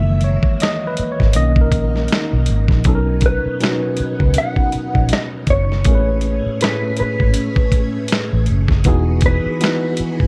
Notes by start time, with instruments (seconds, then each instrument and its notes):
Already playing: fingered electric bass F#1, tine electric piano D#3 E3 G#3 A#3 E5, string machine F#3 A#3 E5
0.21 tine electric piano C#5, closed hi-hat
0.43 muted fingered electric bass stroke, kick
0.60 tine electric piano D#5, snare, closed hi-hat
0.87 tine electric piano B4
0.97 muted fingered electric bass stroke, closed hi-hat
1.12 tine electric piano C#5
1.20 fingered electric bass G#1, kick, snare
1.33 fingered electric bass B1, tine electric piano D#3 A#3 C#4 D#5, string machine F#3 A#3 D#4, closed hi-hat
1.56 kick
1.61 tine electric piano A#4
1.72 fingered electric bass A#1, kick, closed hi-hat
1.96 snare
2.08 closed hi-hat
2.13 snare
2.33 fingered electric bass B1
2.46 fingered electric bass G#1, closed hi-hat
2.68 fingered electric bass A#1, kick, snare
2.84 fingered electric bass B1, tine electric piano B2 F#3 C#4 D#4 A4, string machine B3 C#4 D#4, kick, closed hi-hat
2.95 tine electric piano A#4
3.21 kick, closed hi-hat
3.26 clean electric guitar B4
3.46 muted fingered electric bass stroke
3.60 tine electric piano B2 F#3 C#4 D#4 F#4, snare, closed hi-hat
3.97 muted fingered electric bass stroke, closed hi-hat
4.20 fingered electric bass C#2, kick
4.34 closed hi-hat
4.38 clean electric guitar F#5
4.56 kick
4.72 muted fingered electric bass stroke, closed hi-hat
4.95 fingered electric bass A#1, kick
5.09 closed hi-hat
5.13 clean electric guitar D#5, snare
5.47 fingered electric bass F#1, clean electric guitar C#5, kick, closed hi-hat
5.72 snare
5.84 fingered electric bass A1, tine electric piano A2 A3 C#4 G#4 A#4, string machine A3 C#4 G#4, kick, closed hi-hat
5.95 tine electric piano B4
6.21 closed hi-hat
6.46 muted fingered electric bass stroke
6.61 tine electric piano A2 A3 C#4 G#4 C#5, clean electric guitar B4, snare, closed hi-hat
6.97 clean electric guitar B4, closed hi-hat
7.01 muted fingered electric bass stroke
7.20 fingered electric bass G#1, kick
7.34 closed hi-hat
7.56 kick
7.72 kick, closed hi-hat
8.08 closed hi-hat
8.12 snare
8.33 fingered electric bass A1
8.46 fingered electric bass F#1, closed hi-hat
8.68 kick, snare
8.84 fingered electric bass E1, tine electric piano E3 B3 D#4 F#4, string machine E3 D#4 F#4 G#4, kick, closed hi-hat
8.88 tine electric piano G#4
9.21 kick, closed hi-hat
9.26 clean electric guitar B4
9.46 muted fingered electric bass stroke
9.61 tine electric piano E3 B3 D#4 F#4 B4, snare, closed hi-hat
9.97 muted fingered electric bass stroke, closed hi-hat
10.20 fingered electric bass G#1, kick